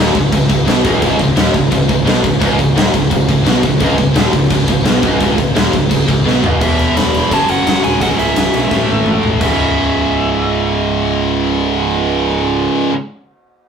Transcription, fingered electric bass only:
0.00 0.14 D#1 loud
0.15 0.31 C#1 medium
0.32 0.49 C#1 medium
0.50 0.66 C#1 medium
0.68 0.84 B1 medium
0.85 1.01 C#1 loud
1.03 1.18 C#1 loud
1.20 1.36 C#1 medium
1.36 1.53 D#1 loud
1.54 1.70 C#1 medium
1.72 1.88 C#1 medium
1.89 2.05 C#1 medium
2.06 2.22 B1 loud
2.24 2.40 C#1 medium
2.42 2.58 C#1 loud
2.59 2.75 C#1 medium
2.76 2.93 D#1 loud
2.94 3.10 C#1 medium
3.12 3.28 C#1 medium
3.29 3.45 C#1 medium
3.46 3.62 B1 loud
3.63 3.80 C#1 medium
3.80 3.97 C#1 loud
3.99 4.15 C#1 medium
4.16 4.32 D#1 loud
4.33 4.50 C#1 medium
4.50 4.67 C#1 medium
4.68 4.83 C#1 medium
4.84 5.01 B1 loud
5.03 5.19 C#1 loud
5.21 5.37 C#1 loud
5.38 5.54 C#1 medium
5.56 5.72 D#1 loud
5.73 5.89 C#1 medium
5.91 6.07 C#1 medium
6.08 6.24 C#1 medium
6.26 6.42 B1 medium
6.44 6.60 C#1 loud
6.61 6.73 E1 loud
6.79 6.90 E1 medium
6.97 7.08 E1 loud
7.14 7.25 E1 loud
7.31 7.42 F#1 medium
7.49 7.61 F#1 loud
7.66 7.78 F#1 loud
7.85 8.01 D#1 medium
8.01 8.13 C#1 loud
8.20 8.31 C#1 medium
8.37 8.48 C#1 loud
8.55 8.66 B1 medium
8.72 8.83 A1 medium
8.89 9.00 A1 medium
9.06 9.17 A1 medium
9.24 9.35 A1 medium
9.41 12.67 C#1 medium

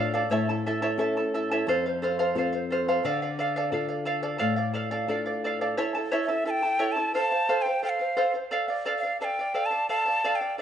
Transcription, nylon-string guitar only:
0.00 0.28 A2 medium
0.00 0.23 D4 soft
0.00 0.23 F4 soft
0.00 0.23 A4 soft
0.30 1.62 A2 medium
0.98 1.64 C#4 soft
0.98 1.64 E4 soft
0.98 1.65 A4 soft
1.67 2.99 F2 medium
2.35 3.01 C4 soft
2.35 3.01 F4 soft
2.35 3.02 A4 soft
3.04 4.37 D3 medium
3.72 4.38 D4 soft
3.72 4.38 F4 soft
3.72 4.39 A4 soft
4.41 5.74 A2 medium
5.08 5.75 D4 soft
5.08 5.75 F4 soft
5.08 5.76 A4 soft

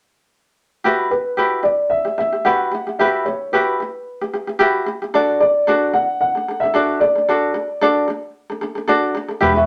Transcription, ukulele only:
0.84 1.11 E4 medium
0.84 1.11 F#4 medium
0.84 1.10 G4 medium
0.84 1.12 B4 medium
1.11 1.33 G4 soft
1.37 1.64 E4 medium
1.37 1.65 F#4 medium
1.37 1.62 G4 medium
1.37 1.65 B4 medium
1.63 1.87 E4 soft
1.63 1.85 G4 soft
2.05 2.19 E4 soft
2.05 2.17 G4 soft
2.18 2.34 E4 medium
2.18 2.31 G4 soft
2.33 2.45 E4 soft
2.33 2.44 G4 soft
2.45 2.72 E4 medium
2.45 2.72 F#4 medium
2.45 2.70 G4 soft
2.45 2.72 B4 medium
2.71 2.88 E4 medium
2.71 2.86 G4 medium
2.87 2.99 E4 soft
2.87 2.98 G4 soft
2.99 3.26 E4 medium
2.99 3.26 F#4 medium
2.99 3.25 G4 medium
2.99 3.26 B4 medium
3.26 3.49 E4 soft
3.26 3.47 G4 soft
3.53 3.80 E4 medium
3.53 3.80 F#4 medium
3.53 3.79 G4 medium
3.53 3.80 B4 medium
3.80 4.03 E4 medium
3.80 4.01 G4 soft
4.21 4.34 E4 medium
4.21 4.32 G4 soft
4.33 4.48 E4 medium
4.33 4.46 G4 medium
4.47 4.59 E4 medium
4.47 4.58 G4 soft
4.59 4.86 E4 medium
4.59 4.87 F#4 medium
4.59 4.85 G4 medium
4.59 4.87 B4 medium
4.86 5.02 E4 medium
4.86 5.01 G4 medium
5.02 5.14 E4 soft
5.02 5.13 G4 soft
5.14 5.40 D4 medium
5.14 5.41 F#4 medium
5.14 5.39 A4 medium
5.14 5.41 D5 medium
5.40 5.63 D4 soft
5.40 5.62 A4 soft
5.67 5.94 D4 medium
5.67 5.94 F#4 medium
5.67 5.92 A4 medium
5.67 5.94 D5 medium
5.93 6.17 D4 medium
5.93 6.15 A4 soft
6.35 6.48 D4 soft
6.35 6.47 A4 soft
6.48 6.64 D4 medium
6.48 6.62 A4 medium
6.63 6.73 D4 soft
6.63 6.72 A4 soft
6.74 7.01 D4 medium
6.74 7.01 F#4 medium
6.74 7.00 A4 medium
6.74 7.02 D5 medium
7.01 7.17 D4 medium
7.01 7.14 A4 medium
7.15 7.28 D4 soft
7.15 7.27 A4 soft
7.29 7.54 D4 medium
7.29 7.55 F#4 medium
7.29 7.53 A4 medium
7.29 7.56 D5 medium
7.54 7.77 D4 soft
7.54 7.76 A4 soft
7.81 8.08 D4 medium
7.81 8.09 F#4 medium
7.81 8.07 A4 medium
7.81 8.09 D5 medium
8.08 8.31 D4 medium
8.08 8.30 A4 medium
8.50 8.62 D4 soft
8.50 8.60 A4 soft
8.61 8.76 D4 medium
8.61 8.74 A4 medium
8.75 8.87 D4 medium
8.75 8.86 A4 soft
8.88 9.15 D4 medium
8.88 9.15 F#4 medium
8.88 9.13 A4 medium
8.88 9.15 D5 medium
9.15 9.30 D4 medium
9.15 9.27 A4 medium
9.28 9.41 D4 soft
9.28 9.40 A4 soft
9.40 9.56 E4 medium
9.40 9.55 F#4 medium
9.40 9.55 G4 medium
9.40 9.54 B4 medium
9.55 9.66 E4 soft
9.55 9.66 F#4 soft
9.55 9.66 B4 soft

